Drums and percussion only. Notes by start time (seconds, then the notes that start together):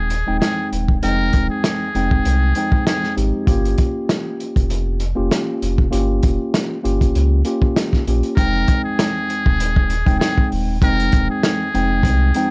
0.10 closed hi-hat
0.42 snare, closed hi-hat
0.73 closed hi-hat
0.88 kick
1.03 closed hi-hat
1.33 kick, closed hi-hat
1.64 snare, closed hi-hat
1.95 closed hi-hat
2.11 kick
2.25 closed hi-hat
2.55 closed hi-hat
2.72 kick
2.87 snare, closed hi-hat
3.03 snare
3.18 closed hi-hat
3.47 kick, closed hi-hat
3.65 closed hi-hat
3.78 kick, closed hi-hat
4.09 snare, closed hi-hat
4.40 closed hi-hat
4.56 kick, closed hi-hat
4.70 closed hi-hat
5.00 closed hi-hat
5.31 snare, closed hi-hat
5.62 closed hi-hat
5.78 kick
5.93 closed hi-hat
6.23 kick, closed hi-hat
6.54 snare, closed hi-hat
6.85 closed hi-hat
7.01 kick, closed hi-hat
7.15 closed hi-hat
7.45 closed hi-hat
7.62 kick
7.76 snare, closed hi-hat
7.93 kick, snare
8.07 closed hi-hat
8.23 closed hi-hat
8.37 kick, closed hi-hat
8.68 kick, closed hi-hat
8.99 snare, closed hi-hat
9.30 closed hi-hat
9.46 kick
9.60 closed hi-hat
9.76 kick
9.90 closed hi-hat
10.06 kick, closed hi-hat
10.21 snare, closed hi-hat
10.38 kick
10.52 open hi-hat
10.82 kick, closed hi-hat
11.00 closed hi-hat
11.12 kick, closed hi-hat
11.43 snare, closed hi-hat
11.75 closed hi-hat
12.03 kick, closed hi-hat
12.34 closed hi-hat